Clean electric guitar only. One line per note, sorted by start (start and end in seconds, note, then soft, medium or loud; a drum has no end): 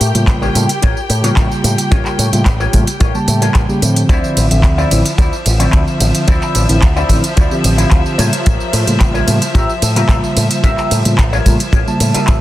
0.00 0.23 F4 medium
0.00 0.23 G4 medium
0.00 0.23 A#4 medium
0.00 0.23 C#5 loud
0.42 0.62 F4 medium
0.42 0.62 G4 medium
0.42 0.62 A#4 medium
0.42 0.62 C#5 medium
0.82 0.96 F4 medium
0.82 0.96 G4 medium
0.82 0.96 A#4 medium
0.82 0.97 C#5 loud
1.09 muted clean electric guitar stroke soft
1.24 1.44 F4 medium
1.24 1.44 G4 medium
1.24 1.44 A#4 medium
1.24 1.44 C#5 loud
1.64 muted clean electric guitar stroke soft
1.91 2.26 F4 loud
1.91 2.26 G4 loud
1.91 2.26 A#4 medium
1.91 2.26 C#5 loud
2.60 2.80 F4 medium
2.60 2.80 G4 medium
2.60 2.80 A#4 medium
2.60 2.80 C#5 loud
3.00 3.15 F4 medium
3.00 3.15 G4 medium
3.00 3.15 A#4 medium
3.00 3.15 C#5 loud
3.28 muted clean electric guitar stroke soft
3.41 3.62 F4 medium
3.41 3.62 G4 medium
3.41 3.62 A#4 medium
3.41 3.62 C#5 loud
3.82 muted clean electric guitar stroke soft
4.09 4.44 E4 loud
4.09 4.44 F4 loud
4.09 4.44 C5 loud
4.09 4.44 D5 loud
4.78 4.98 E4 medium
4.78 4.98 F4 medium
4.78 4.98 C5 medium
4.78 4.99 D5 loud
5.18 5.33 E4 medium
5.18 5.33 F4 medium
5.18 5.33 C5 medium
5.18 5.33 D5 loud
5.45 muted clean electric guitar stroke soft
5.59 5.80 E4 loud
5.59 5.80 F4 medium
5.59 5.80 C5 medium
5.59 5.80 D5 medium
6.00 muted clean electric guitar stroke soft
6.27 6.62 E4 loud
6.27 6.62 F4 loud
6.27 6.62 C5 loud
6.27 6.62 D5 loud
6.96 7.17 E4 medium
6.96 7.17 F4 medium
6.96 7.17 C5 medium
6.96 7.17 D5 loud
7.36 7.51 E4 medium
7.36 7.51 F4 medium
7.36 7.51 C5 medium
7.36 7.51 D5 medium
7.64 muted clean electric guitar stroke soft
7.78 7.98 E4 medium
7.78 7.98 F4 medium
7.78 7.98 C5 medium
7.78 7.99 F5 loud
8.18 8.95 F4 medium
8.18 8.95 G4 medium
8.18 8.95 A#4 medium
8.18 8.95 C#5 loud
9.14 9.35 F4 medium
9.14 9.35 G4 medium
9.14 9.35 A#4 medium
9.14 9.35 C#5 loud
9.54 9.69 F4 medium
9.54 9.69 G4 medium
9.54 9.69 A#4 medium
9.54 9.69 E5 medium
9.82 muted clean electric guitar stroke soft
9.96 10.16 F4 medium
9.96 10.17 G4 medium
9.96 10.17 A#4 medium
9.96 10.17 E5 loud
10.36 muted clean electric guitar stroke soft
10.63 10.98 F4 loud
10.63 10.98 G4 loud
10.63 10.98 A#4 medium
10.63 10.99 E5 loud
11.33 11.53 F4 medium
11.33 11.53 G4 medium
11.33 11.53 A#4 medium
11.33 11.53 C#5 loud
11.73 11.87 F4 medium
11.73 11.87 G4 medium
11.73 11.87 A#4 medium
11.73 11.87 C#5 medium
12.01 muted clean electric guitar stroke soft
12.14 12.35 F4 medium
12.14 12.35 G4 medium
12.14 12.35 A#4 medium
12.14 12.35 E5 loud